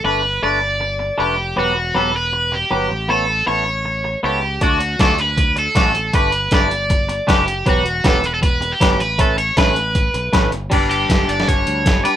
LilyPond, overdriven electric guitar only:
\new Staff \with { instrumentName = "Overdriven electric guitar" } { \time 4/4 \key g \lydian \tempo 4 = 158 b'4 d''2 g'4 | fis'4 a'8 b'4 g'4. | a'4 cis''2 g'4 | fis'4 a'8 b'4 a'4. |
b'4 d''2 g'4 | fis'4 a'8 b'16 a'16 b'8. g'8. b'8 | a'8 cis''8 b'2~ b'8 r8 | r8 g'4 d''8 cis''4. b'8 | }